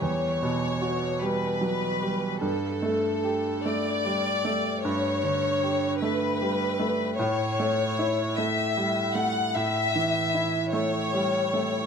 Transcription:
<<
  \new Staff \with { instrumentName = "Violin section" } { \time 6/8 \key g \lydian \tempo 4. = 51 cis''4. b'4. | a'4. d''4. | cis''4. b'4. | cis''4. e''4 fis''8 |
e''4. cis''4. | }
  \new Staff \with { instrumentName = "Grand piano" } { \clef bass \time 6/8 \key g \lydian <e, g>8 b,8 fis'8 g8 fis8 g8 | g,8 a8 g'8 a8 g8 a8 | g,8 d8 g'8 a8 g8 a8 | a,8 a8 e'8 a8 g8 a8 |
a,8 e8 e'8 a8 g8 a8 | }
>>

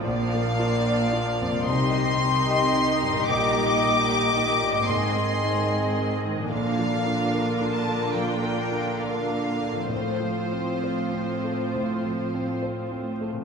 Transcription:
<<
  \new Staff \with { instrumentName = "Violin section" } { \time 4/4 \key bes \major \tempo 4 = 73 f''2 c'''2 | d'''2 c'''4. r8 | f''4. a''8 g''4 f''4 | c''2. r4 | }
  \new Staff \with { instrumentName = "Violin section" } { \time 4/4 \key bes \major << { d''2 ees''2~ | ees''1 | bes'1 | c''2.~ c''8. r16 | } \\ { d'2 g'2~ | g'2 aes'2 | f'1 | f'2.~ f'8. r16 | } >> }
  \new Staff \with { instrumentName = "Harp" } { \time 4/4 \key bes \major <bes, bes f' d'' f''>2 <c g ees' ees''>2 | <bes, g ees' ees''>2 <aes, aes ees' ees''>2 | <bes, f d' bes'>1 | <a, f c' c''>1 | }
  \new Staff \with { instrumentName = "Grand piano" } { \time 4/4 \key bes \major \tuplet 3/2 { bes,,8 bes8 f'8 d''8 f'8 f,8 c,8 g8 ees'8 ees''8 ees'8 g,8 } | \tuplet 3/2 { bes,,8 g8 ees'8 ees''8 ees'8 bes,8 aes,8 aes8 ees'8 ees''8 ees'8 ees8 } | \tuplet 3/2 { bes,8 f8 d'8 bes'8 d'8 bes8 f8 bes8 d'8 bes'8 d'8 bes8 } | \tuplet 3/2 { a,8 f8 c'8 c''8 c'8 a8 a,8 f8 c'8 c''8 c'8 a8 } | }
  \new Staff \with { instrumentName = "Viola section" } { \time 4/4 \key bes \major << { bes2 ees'2~ | ees'2 c'2 | d'1 | c'2.~ c'8. r16 | } \\ { f2 ees2~ | ees1 | d1 | f2.~ f8. r16 | } >> }
  \new Staff \with { instrumentName = "Cello section" } { \clef bass \time 4/4 \key bes \major bes,2 c2 | bes,2 aes,2 | bes,1 | a,2.~ a,8. r16 | }
>>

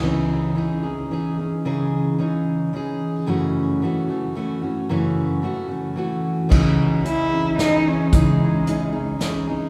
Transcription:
<<
  \new Staff \with { instrumentName = "Cello" } { \time 3/4 \key cis \minor \tempo 4 = 111 r2. | r2. | r2. | r2. |
r4 e'4 dis'8 cis'8 | gis2 r4 | }
  \new Staff \with { instrumentName = "Steel-string acoustic guitar" } { \time 3/4 \key cis \minor <cis e cis' dis' gis'>4 <e cis' dis' gis'>8 <cis' dis' gis'>8 <e cis' dis' gis'>8 <cis' dis' gis'>8 | <cis e cis' dis' gis'>4 <e cis' dis' gis'>4 <e cis' dis' gis'>4 | <fis, cis e a cis' fis'>4 <e a cis' fis'>8 <e a cis' fis'>8 <e a cis' fis'>8 <e a cis' fis'>8 | <fis, cis e a cis' fis'>4 <e a cis' fis'>8 <e a cis' fis'>8 <e a cis' fis'>4 |
<cis e cis' dis' gis'>4 <e cis' dis' gis'>8 <cis' dis' gis'>8 <e cis' dis' gis'>4 | <cis e cis' dis' gis'>4 <e cis' dis' gis'>8 <cis' dis' gis'>8 <e cis' dis' gis'>8 <cis' dis' gis'>8 | }
  \new Staff \with { instrumentName = "Upright bass" } { \clef bass \time 3/4 \key cis \minor r2. | r2. | r2. | r2. |
cis,8 r2 r8 | cis,8 r2 r8 | }
  \new DrumStaff \with { instrumentName = "Drums" } \drummode { \time 3/4 r4 r4 r4 | r4 r4 r4 | r4 r4 r4 | r4 r4 r4 |
<cymc bd>4 hh4 <hh sn>4 | <hh bd>4 hh4 <hh sn>4 | }
>>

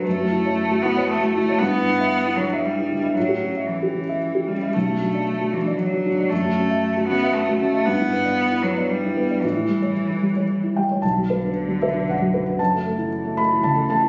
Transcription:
<<
  \new Staff \with { instrumentName = "Felt piano" } { \time 3/4 \key b \minor \tempo 4 = 115 << { r2. | r2. | r2. | r2. |
r2. | r2. | r2 r8 g''8 | a''4. e''8 fis''4 |
a''4. b''8 a''8 a''8 | } \\ { fis,16 fis'16 e'16 cis''8 fis'16 e'16 cis''8 fis'16 e'16 cis''16 | g,16 e'16 d'16 e''8 e'16 d'16 e''8 e'16 d'16 e''16 | a,16 g'16 cis'16 e''8 g'16 cis'16 e''8 g'16 cis'16 e''16 | b,,16 fis'16 d'16 d''8 fis'16 d'16 d''8 fis'16 d'16 d''16 |
fis,16 fis'16 cis'16 e''8 fis'16 cis'16 e''8 fis'16 cis'16 e''16 | g,16 e'16 b16 d''8 e'16 b16 d''8 e'16 b16 d''16 | a,16 e'16 g16 cis''8 e'16 g16 cis''8 e'16 g16 cis''16 | b,,16 fis16 b'16 d'8 fis16 b'16 d'16 fis,16 fis16 b'16 d'16 |
fis,16 a16 a'16 e'8 a16 a'16 e'16 cis16 a16 a'16 e'16 | } >> }
  \new Staff \with { instrumentName = "Cello" } { \clef bass \time 3/4 \key b \minor a4. b8 a8 a8 | b4. fis8 g4 | fis4 e4. g8 | a4. e8 fis4 |
a4. b8 a8 a8 | b4. fis8 g4 | e2~ e8 r8 | d2. |
e2. | }
  \new Staff \with { instrumentName = "Sub bass" } { \clef bass \time 3/4 \key b \minor r2. | r2. | r2. | r2. |
r2. | r2. | r2. | b,,2. |
fis,,2. | }
>>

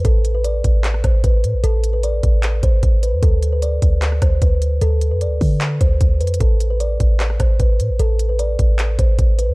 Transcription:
<<
  \new Staff \with { instrumentName = "Kalimba" } { \time 4/4 \key a \minor \tempo 4 = 151 a'8. b'16 d''4. c''8 b'8 r8 | a'8. b'16 d''4. c''4 b'8 | a'8. b'16 d''4. c''8 b'8 r8 | a'8. b'16 d''4. c''4 b'8 |
a'8. b'16 d''4. c''8 b'8 r8 | a'8. b'16 d''4. c''4 b'8 | }
  \new Staff \with { instrumentName = "808-style bass" } { \clef bass \time 4/4 \key a \minor a,,4. a,,4 a,,8 a,,8 a,16 a,,16 | a,,4. a,,4 a,,8 a,,8. e,16 | d,4. d,4 d,8 d,4 | d,8. f,16. d,16. d4 d,8 d,8 f,8 |
a,,4. a,,4 a,,8 a,,8 a,16 a,,16 | a,,4. a,,4 a,,8 a,,8. e,16 | }
  \new DrumStaff \with { instrumentName = "Drums" } \drummode { \time 4/4 <hh bd>8 hh8 hh8 <hh bd>8 <hc hh>16 ss16 <hh bd ss>8 <hh bd>8 hh8 | hh8 hh8 hh8 <hh bd>8 <hc hh>8 <hh bd>8 <hh bd>8 hh8 | <hh bd>8 hh8 hh8 <hh bd>8 <hc hh>16 ss16 <hh bd ss>8 <hh bd>8 hh8 | hh8 hh8 hh8 <hho bd>8 <hc hh>8 <hh bd>8 \tuplet 3/2 { <hh bd>16 r16 r16 hh16 hh16 hh16 } |
<hh bd>8 hh8 hh8 <hh bd>8 <hc hh>16 ss16 <hh bd ss>8 <hh bd>8 hh8 | hh8 hh8 hh8 <hh bd>8 <hc hh>8 <hh bd>8 <hh bd>8 hh8 | }
>>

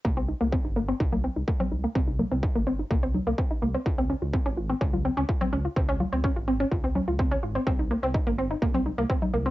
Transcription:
<<
  \new Staff \with { instrumentName = "Synth arpeggio sound" } { \time 4/4 \key c \phrygian \tempo 4 = 126 bes16 c'16 ees'16 bes16 c'16 ees'16 bes16 c'16 ees'16 bes16 c'16 ees'16 bes16 c'16 ees'16 bes16 | c'16 ees'16 bes16 c'16 ees'16 bes16 c'16 ees'16 bes16 c'16 ees'16 bes16 c'16 ees'16 bes16 c'16 | f'16 c'16 des'16 f'16 c'16 des'16 f'16 c'16 des'16 f'16 c'16 des'16 f'16 c'16 des'16 f'16 | c'16 des'16 f'16 c'16 des'16 f'16 c'16 des'16 f'16 c'16 des'16 f'16 c'16 des'16 f'16 c'16 |
c'16 ees'16 bes16 c'16 ees'16 bes16 c'16 ees'16 bes16 c'16 ees'16 bes16 c'16 ees'16 bes16 c'16 | }
  \new Staff \with { instrumentName = "Detuned saw bass" } { \clef bass \time 4/4 \key c \phrygian c,8 r16 c,16 r16 g,,8 r16 c,8 r16 c,16 r8 c,16 r16 | c,8 r16 c,16 r16 g,,8 r16 c,8 r16 c,16 r8 c,16 r16 | des,8 r16 des,16 r16 aes,,8 r16 des,8 r16 des,16 r8 des,16 r16 | des,8 r16 des,16 r16 aes,,8 r16 des,8 r16 des,8 r16 aes,,16 r16 |
c,8 r16 c,16 r16 g,,8 r16 c,8 r16 c,16 r8 c,16 r16 | }
  \new DrumStaff \with { instrumentName = "Drums" } \drummode { \time 4/4 bd4 bd4 bd16 cgl8. bd16 cgl8. | bd8 cgl8 bd4 bd8 cgl8 bd4 | bd4 bd4 bd16 cgl8. bd16 cgl8. | bd8 cgl8 bd4 bd8 cgl8 bd4 |
bd4 bd4 bd16 cgl8. bd16 cgl8. | }
>>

